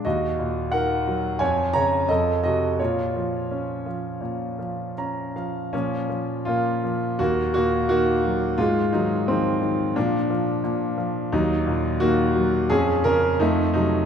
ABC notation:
X:1
M:4/4
L:1/8
Q:1/4=86
K:Bbm
V:1 name="Grand piano"
[Ge]2 [Bg]2 [da] [db] [=Ae] [Ge] | [Fd]6 b f | [F,D]2 [B,F]2 [B,G] [B,G] [B,G]2 | [A,F] [G,E] [E,C]2 [F,=D]2 z2 |
[G,E]2 [B,G]2 [DA] [DB] [=A,E] [G,E] |]
V:2 name="Grand piano" clef=bass
E,, B,, E, G, F,, D, F,, C, | B,, F, D F, B,, F, D F, | B,, F, B,, F, E,, B,, E, G, | A,, E, F, E, B,, F, B,, F, |
E,, B,, E, G, F,, D, F,, C, |]